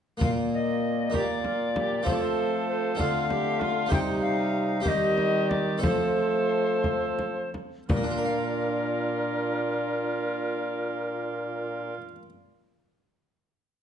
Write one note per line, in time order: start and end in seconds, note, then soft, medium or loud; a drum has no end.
0.17 2.01 A#2 medium
0.17 2.02 A#2 soft
0.17 1.09 A#3 soft
0.17 1.10 A#3 medium
0.17 1.10 F4 soft
0.17 1.11 A#4 soft
0.17 frame drum medium
0.23 0.29 F5 medium
0.54 1.13 D#5 medium
1.10 2.01 A#3 soft
1.10 2.07 A#3 soft
1.10 2.02 F4 soft
1.10 2.02 A#4 soft
1.14 1.22 G4 medium
1.14 2.05 D5 medium
1.14 frame drum soft
1.44 1.74 F4 soft
1.44 frame drum soft
1.76 2.06 G4 medium
1.76 frame drum medium
2.03 3.00 F3 medium
2.03 2.95 F3 medium
2.03 2.98 A3 medium
2.03 2.94 C4 soft
2.03 2.95 F4 soft
2.03 2.96 A4 soft
2.03 frame drum medium
2.07 3.02 A4 medium
2.07 2.13 C5 medium
2.14 2.22 D5 medium
2.20 2.67 C5 medium
2.68 2.98 C5 medium
2.95 3.93 D3 medium
2.95 3.87 D3 medium
2.95 3.89 A3 medium
2.95 3.85 C4 soft
2.95 3.87 F4 soft
2.95 3.88 A4 soft
2.95 3.89 F5 loud
2.99 3.30 F4 medium
2.99 frame drum medium
3.30 3.61 G4 medium
3.30 frame drum soft
3.60 3.92 F4 medium
3.60 frame drum soft
3.86 4.79 C4 medium
3.86 4.81 G4 soft
3.86 4.81 C5 medium
3.91 4.81 C3 medium
3.91 4.85 C3 medium
3.91 4.83 G3 medium
3.91 4.84 D#4 medium
3.91 3.99 G5 medium
3.91 frame drum medium
4.21 4.84 F5 medium
4.80 5.77 C4 soft
4.80 5.78 G4 soft
4.80 5.80 G4 medium
4.80 5.78 C5 soft
4.80 4.89 F5 medium
4.85 5.78 D#3 soft
4.85 5.84 D#3 medium
4.85 5.84 G3 medium
4.85 5.50 D#5 medium
4.85 frame drum medium
5.18 frame drum soft
5.49 5.81 D5 medium
5.49 frame drum soft
5.78 7.82 C4 soft
5.78 7.83 A4 soft
5.78 7.83 C5 soft
5.78 7.49 C5 medium
5.82 7.49 F3 soft
5.82 7.53 F3 medium
5.82 7.53 A3 medium
5.82 7.32 A4 medium
5.82 frame drum medium
6.84 frame drum soft
7.19 frame drum soft
7.54 frame drum soft
7.89 11.94 A#2 soft
7.89 11.94 A#2 medium
7.89 11.93 D4 medium
7.89 11.97 F4 medium
7.89 11.95 A#4 medium
7.89 frame drum medium
7.96 12.01 A#3 soft
8.03 12.08 D4 soft
8.11 12.15 F4 soft
8.18 12.22 A#4 soft
8.25 12.29 F5 soft